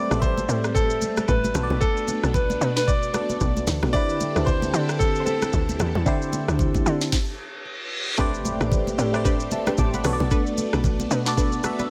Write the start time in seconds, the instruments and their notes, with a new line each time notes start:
Already playing: string machine G3 A3 C4, fm electric piano A3 G4 B4 C5 D5, grand piano D5
0.10 log drum bass A1, fm electric piano A3 G4 A4 C5 D5, cross-stick, shaker
0.19 grand piano C5, fm electric piano E5, kick, low conga, shaker
0.38 high conga, shaker
0.49 log drum bass A2, shaker
0.64 cross-stick, shaker
0.75 grand piano A4, kick, shaker
0.90 shaker
1.02 high conga, shaker
1.17 cross-stick, high conga, shaker
1.28 log drum bass A1, grand piano B4, kick, shaker
1.44 high conga, shaker
1.54 log drum bass B1, fm electric piano B3 F#4 A4 C5, string machine B3 D4, cross-stick, high conga, low conga, shaker
1.63 fm electric piano D5
1.70 log drum bass B1, high conga
1.81 grand piano A4, kick, shaker
1.97 shaker
2.08 high conga, shaker
2.23 log drum bass B1, cross-stick, shaker
2.34 grand piano B4, kick, low conga, shaker
2.50 high conga, shaker
2.61 log drum bass B2, shaker
2.76 grand piano B4, snare, shaker
2.87 grand piano D5, kick, shaker
3.03 shaker
3.13 fm electric piano B3 F#4 A4 D5, cross-stick, high conga, shaker
3.30 high conga, shaker
3.40 log drum bass B1, kick, shaker
3.57 high conga, shaker
3.67 log drum bass D2, snare, high conga, low conga, shaker
3.83 log drum bass B1, cross-stick, high conga
3.93 fm electric piano D3 C4 E4 G4 B4, string machine D3 C4 E4 G4 A4, grand piano D5, kick, shaker
4.09 shaker
4.21 high conga, shaker
4.35 log drum bass D2, fm electric piano D3 C4 E4 G4 A4, cross-stick, shaker
4.45 fm electric piano C5, grand piano C5, kick, low conga, shaker
4.62 high conga, shaker
4.74 log drum bass D3, shaker
4.89 cross-stick, shaker
4.99 grand piano A4, kick, shaker
5.15 shaker
5.20 grand piano C5
5.26 grand piano A4, high conga, shaker
5.42 cross-stick, high conga, shaker
5.53 log drum bass D2, kick, shaker
5.69 high conga, shaker
5.80 log drum bass E2, cross-stick, high conga, low conga, shaker
5.95 log drum bass E2, high conga
6.06 fm electric piano D3 C4 E4 G4 C5, kick, shaker
6.22 shaker
6.33 high conga, shaker
6.48 log drum bass D2, cross-stick, shaker
6.59 kick, low conga, shaker
6.74 kick, high conga, shaker
6.86 log drum bass D3, shaker
7.01 snare, shaker
7.12 kick, snare, reverse cymbal
8.18 fm electric piano A3 G4 B4 C5 D5, string machine A3 C4 G4, synth pluck C4 D4 G4 B4, kick, impact, shaker
8.34 shaker
8.45 high conga, shaker
8.60 log drum bass A1, synth pluck C4 D4 G4 B4, cross-stick, shaker
8.72 kick, low conga, shaker
8.87 high conga, shaker
8.98 log drum bass A2, synth pluck C4 D4 G4 B4, shaker
9.13 fm electric piano A3 G4 B4 C5 D5, cross-stick, shaker
9.24 synth pluck C4 D4 G4 B4, kick, shaker
9.40 shaker
9.51 fm electric piano E5 A5, high conga, shaker
9.67 synth pluck C4 D4 G4 B4, fm electric piano G5 C6, cross-stick, high conga, shaker
9.78 log drum bass A1, fm electric piano A5 D6, kick, shaker
9.94 fm electric piano F#5 B5, high conga, shaker
10.04 log drum bass B1, fm electric piano B3 F#4 A4 C#5, string machine B3 D4, synth pluck D4 A4 B4, cross-stick, open hi-hat, low conga, shaker
10.13 fm electric piano D5
10.20 log drum bass B1, high conga
10.31 synth pluck D4 A4 B4, kick, shaker
10.46 shaker
10.58 high conga, shaker
10.73 log drum bass B1, synth pluck D4 A4 B4, cross-stick, shaker
10.84 kick, low conga, shaker
11.00 high conga, shaker
11.11 log drum bass B2, synth pluck D4 A4 B4, shaker
11.25 fm electric piano B3 F#4 A4 D5, snare, shaker
11.37 synth pluck D4 A4 B4, kick, shaker
11.52 shaker
11.63 fm electric piano B3 F#4 A4 E5, cross-stick, high conga, shaker
11.79 synth pluck D4 A4 B4, high conga, shaker